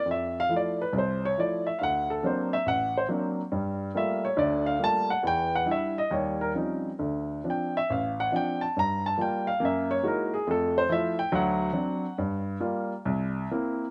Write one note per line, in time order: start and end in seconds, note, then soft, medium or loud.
0.05 0.44 F2 medium
0.11 0.37 E5 medium
0.40 0.52 F5 loud
0.49 0.81 F3 medium
0.49 0.81 A3 soft
0.49 0.81 E4 medium
0.56 0.82 D5 medium
0.82 0.93 B4 medium
0.93 1.31 C2 medium
0.93 0.97 B4 soft
0.98 1.25 C5 medium
1.25 1.38 C#5 medium
1.38 1.68 F3 soft
1.38 1.68 A3 soft
1.38 1.69 E4 soft
1.38 1.67 D5 medium
1.67 1.80 E5 medium
1.79 2.18 D2 medium
1.79 1.82 F5 medium
1.83 2.10 F#5 loud
2.10 2.24 A4 medium
2.23 2.54 F#3 soft
2.23 2.54 A#3 medium
2.23 2.54 C4 medium
2.23 2.54 D4 medium
2.23 2.53 C5 medium
2.53 2.67 E5 medium
2.66 3.04 A1 medium
2.66 2.96 F#5 medium
2.98 3.06 C5 medium
3.08 3.40 F#3 medium
3.08 3.40 A#3 soft
3.08 3.40 C4 medium
3.08 3.40 D4 medium
3.52 3.90 G2 medium
3.52 3.90 G3 medium
3.95 4.25 G3 medium
3.95 4.26 A3 medium
3.95 4.26 A#3 medium
3.95 4.26 F4 medium
3.95 4.24 E5 medium
4.25 4.38 C#5 medium
4.37 4.74 D2 medium
4.37 4.75 D3 medium
4.37 4.66 D5 medium
4.66 4.80 F5 medium
4.79 5.10 G3 medium
4.79 5.10 A3 medium
4.79 5.10 A#3 soft
4.79 5.10 F4 medium
4.84 5.10 A5 loud
5.10 5.24 F#5 medium
5.23 5.61 E2 medium
5.23 5.62 E3 medium
5.27 5.54 G5 loud
5.55 5.68 F#5 medium
5.65 5.98 G3 medium
5.65 5.98 D4 medium
5.65 5.98 E4 medium
5.71 5.98 E5 medium
5.98 6.12 D#5 medium
6.11 6.51 D#2 medium
6.11 6.51 G3 medium
6.11 6.42 C#5 medium
6.41 6.51 A#4 medium
6.55 6.88 F3 medium
6.55 6.89 G3 soft
6.55 6.89 C4 soft
6.55 6.89 C#4 soft
6.55 6.89 D#4 medium
6.99 7.39 D2 medium
6.99 7.40 D3 medium
7.44 7.77 F3 medium
7.44 7.77 C4 soft
7.44 7.77 D4 medium
7.50 7.77 G5 medium
7.77 7.91 E5 medium
7.90 8.28 A1 medium
7.90 8.20 F5 medium
8.20 8.34 F#5 medium
8.32 8.63 F3 medium
8.32 8.63 C4 soft
8.32 8.63 D4 medium
8.32 8.63 G5 medium
8.61 8.76 A5 medium
8.77 9.13 G2 medium
8.77 9.05 A#5 loud
9.06 9.19 A5 medium
9.18 9.48 G3 medium
9.18 9.48 A#3 medium
9.18 9.48 F4 medium
9.18 9.48 G5 medium
9.47 9.61 F5 medium
9.60 9.98 F#2 medium
9.60 9.98 A#3 medium
9.65 9.91 E5 medium
9.91 10.04 C#5 medium
10.03 10.33 G#3 medium
10.03 10.33 A#3 medium
10.03 10.33 D#4 soft
10.03 10.33 E4 medium
10.03 10.34 F#4 medium
10.08 10.33 A#4 medium
10.34 10.47 G#4 medium
10.47 10.84 F2 medium
10.47 10.84 A3 medium
10.47 10.76 A4 medium
10.78 10.90 C5 loud
10.89 11.19 F3 medium
10.89 11.19 A3 medium
10.89 11.19 E4 medium
10.89 11.18 E5 medium
11.19 11.32 G5 medium
11.32 11.69 D2 medium
11.32 11.69 F#3 medium
11.32 12.16 F#5 medium
11.73 12.04 F#3 medium
11.73 12.05 C4 medium
11.73 12.05 D4 medium
12.18 12.56 G2 medium
12.60 12.92 G3 medium
12.60 12.92 A#3 medium
12.60 12.92 F4 medium
13.05 13.45 C2 medium
13.51 13.84 A#3 medium
13.51 13.84 C4 medium
13.51 13.84 E4 medium